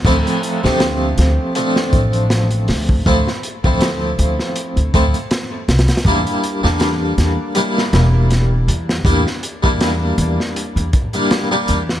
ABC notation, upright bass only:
X:1
M:4/4
L:1/16
Q:"Swing 16ths" 1/4=80
K:Dm
V:1 name="Upright bass" clef=bass
D,, z2 D,,3 D,, z3 A,,,4 D,,2 | D,, z2 D,,3 D,, z2 D,, D,, z3 C,, z | E,, z2 E,,3 E,, z3 E,,,4 E,,2 | E,, z2 E,,3 E,, z2 E,, z4 E,,2 |]